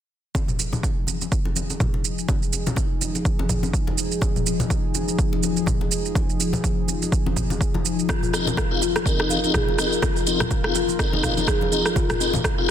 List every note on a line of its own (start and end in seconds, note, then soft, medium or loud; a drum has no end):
0.35 12.71 F3 medium
0.35 8.05 D#4 medium
0.35 8.08 G#4 medium
0.35 kick loud
0.35 muted conga soft
0.35 high conga medium
0.35 shaker soft
0.48 low conga medium
0.48 shaker soft
0.59 muted conga soft
0.59 shaker medium
0.73 high conga medium
0.73 low conga medium
0.73 shaker soft
0.83 kick loud
0.83 muted conga soft
0.83 shaker soft
1.07 high conga medium
1.07 shaker medium
1.21 muted conga soft
1.21 shaker soft
1.32 kick loud
1.32 shaker soft
1.45 muted conga soft
1.56 high conga medium
1.56 shaker medium
1.70 muted conga soft
1.70 shaker soft
1.80 kick loud
1.80 low conga loud
1.80 shaker soft
1.94 muted conga medium
2.05 shaker medium
2.18 shaker soft
2.29 kick loud
2.29 muted conga soft
2.29 high conga medium
2.29 shaker medium
2.43 shaker soft
2.53 muted conga soft
2.53 shaker medium
2.67 high conga loud
2.67 low conga medium
2.67 shaker soft
2.76 kick loud
2.76 muted conga soft
2.76 shaker soft
3.01 high conga medium
3.01 shaker medium
3.15 muted conga soft
3.15 shaker soft
3.25 kick loud
3.25 shaker soft
3.39 muted conga soft
3.39 high conga loud
3.49 kick medium
3.49 low conga medium
3.49 shaker medium
3.63 muted conga soft
3.63 high conga medium
3.63 shaker soft
3.73 kick loud
3.73 shaker soft
3.87 muted conga medium
3.87 high conga loud
3.98 shaker medium
4.12 shaker soft
4.21 kick loud
4.21 muted conga soft
4.21 high conga medium
4.21 shaker medium
4.36 low conga medium
4.36 shaker soft
4.46 muted conga soft
4.46 shaker medium
4.60 high conga medium
4.60 low conga medium
4.60 shaker soft
4.70 kick loud
4.70 muted conga soft
4.70 shaker soft
4.95 high conga medium
4.95 shaker medium
5.08 muted conga soft
5.08 shaker soft
5.19 kick loud
5.19 shaker medium
5.33 muted conga soft
5.43 high conga medium
5.43 shaker medium
5.56 muted conga soft
5.56 shaker soft
5.66 kick loud
5.66 low conga medium
5.66 shaker medium
5.81 muted conga medium
5.92 shaker medium
6.05 shaker soft
6.15 kick loud
6.15 muted conga soft
6.15 high conga medium
6.15 shaker soft
6.30 shaker soft
6.40 muted conga soft
6.40 shaker medium
6.53 high conga loud
6.53 low conga medium
6.53 shaker soft
6.64 kick loud
6.64 muted conga soft
6.64 shaker soft
6.88 high conga medium
6.88 shaker medium
7.02 muted conga soft
7.02 shaker soft
7.12 kick loud
7.12 shaker soft
7.26 muted conga soft
7.26 high conga loud
7.36 kick medium
7.36 low conga medium
7.36 shaker medium
7.50 muted conga soft
7.50 high conga loud
7.50 shaker soft
7.61 kick loud
7.61 shaker medium
7.74 muted conga medium
7.74 high conga loud
7.85 shaker medium
7.99 shaker soft
8.09 8.22 F4 medium
8.09 12.71 F4 medium
8.09 12.71 A#4 medium
8.09 kick loud
8.09 cross-stick medium
8.09 muted conga soft
8.09 high conga medium
8.09 shaker soft
8.23 8.33 F4 medium
8.23 low conga medium
8.23 shaker soft
8.33 8.49 C4 medium
8.33 8.48 D#4 medium
8.33 8.48 F4 medium
8.33 8.48 G#4 medium
8.33 8.48 D#5 medium
8.33 cross-stick medium
8.33 muted conga soft
8.33 shaker medium
8.47 high conga medium
8.47 low conga medium
8.47 shaker soft
8.57 kick loud
8.57 cross-stick medium
8.57 muted conga soft
8.57 shaker soft
8.71 8.84 C4 medium
8.71 8.84 D#4 medium
8.71 8.84 F4 medium
8.71 8.81 F4 medium
8.71 8.84 G#4 medium
8.71 8.84 F5 medium
8.81 8.95 F4 medium
8.81 high conga medium
8.81 shaker medium
8.96 cross-stick medium
8.96 muted conga soft
8.96 shaker soft
9.06 9.40 C4 medium
9.06 9.41 D#4 medium
9.06 9.40 F4 medium
9.06 9.40 G#4 medium
9.06 9.18 A#4 medium
9.06 9.40 D#5 medium
9.06 kick loud
9.06 shaker soft
9.19 9.25 D#4 medium
9.19 cross-stick medium
9.19 muted conga soft
9.29 9.42 F5 medium
9.29 high conga medium
9.29 shaker medium
9.44 9.56 C4 medium
9.44 9.56 D#4 medium
9.44 9.54 D#4 medium
9.44 9.56 F4 medium
9.44 9.56 G#4 medium
9.44 9.56 D#5 medium
9.44 muted conga soft
9.44 shaker soft
9.54 9.67 G#4 medium
9.54 kick loud
9.54 cross-stick medium
9.54 low conga loud
9.54 shaker soft
9.69 muted conga soft
9.78 9.94 C4 medium
9.78 9.94 D#4 medium
9.78 9.94 F4 medium
9.78 9.94 G#4 medium
9.78 9.94 D#5 medium
9.78 cross-stick medium
9.78 shaker medium
9.92 shaker soft
10.02 10.15 F4 medium
10.02 kick loud
10.02 cross-stick medium
10.02 muted conga soft
10.02 high conga medium
10.02 shaker soft
10.16 10.26 F4 medium
10.16 shaker soft
10.26 10.42 C4 medium
10.26 10.42 D#4 medium
10.26 10.42 F4 medium
10.26 10.42 G#4 medium
10.26 10.42 D#5 medium
10.26 muted conga soft
10.26 shaker medium
10.40 cross-stick medium
10.40 high conga medium
10.40 low conga medium
10.40 shaker soft
10.51 kick loud
10.51 muted conga soft
10.51 shaker soft
10.64 10.77 C4 medium
10.64 10.77 D#4 medium
10.64 10.77 F4 medium
10.64 10.74 F4 medium
10.64 10.77 G#4 medium
10.64 10.77 F5 medium
10.64 cross-stick medium
10.75 10.88 F4 medium
10.75 high conga medium
10.75 shaker medium
10.88 muted conga soft
10.88 shaker soft
10.99 11.34 C4 medium
10.99 11.34 D#4 medium
10.99 11.34 F4 medium
10.99 11.34 G#4 medium
10.99 11.12 A#4 medium
10.99 11.34 D#5 medium
10.99 kick loud
10.99 cross-stick medium
10.99 shaker soft
11.13 11.19 D#4 medium
11.13 muted conga soft
11.13 high conga medium
11.23 11.36 F5 medium
11.23 kick medium
11.23 cross-stick medium
11.23 low conga medium
11.23 shaker medium
11.37 11.50 C4 medium
11.37 11.50 D#4 medium
11.37 11.47 D#4 medium
11.37 11.50 F4 medium
11.37 11.50 G#4 medium
11.37 11.50 D#5 medium
11.37 muted conga soft
11.37 high conga medium
11.37 shaker soft
11.48 11.61 G#4 medium
11.48 kick loud
11.48 cross-stick medium
11.48 shaker soft
11.61 muted conga soft
11.61 high conga medium
11.72 11.87 C4 medium
11.72 11.87 D#4 medium
11.72 11.87 F4 medium
11.72 11.87 G#4 medium
11.72 11.87 D#5 medium
11.72 shaker medium
11.86 cross-stick medium
11.86 shaker soft
11.96 12.09 F4 medium
11.96 kick loud
11.96 muted conga soft
11.96 high conga medium
11.96 shaker soft
12.10 12.20 F4 medium
12.10 cross-stick medium
12.10 low conga medium
12.10 shaker soft
12.20 12.36 C4 medium
12.20 12.36 D#4 medium
12.20 12.36 F4 medium
12.20 12.36 G#4 medium
12.20 12.36 D#5 medium
12.20 muted conga soft
12.20 shaker medium
12.33 high conga loud
12.33 low conga medium
12.33 shaker soft
12.44 kick loud
12.44 cross-stick medium
12.44 muted conga medium
12.44 shaker soft
12.58 12.71 C4 medium
12.58 12.71 D#4 medium
12.58 12.71 F4 medium
12.58 12.68 F4 loud
12.58 12.71 G#4 medium
12.58 12.71 F5 medium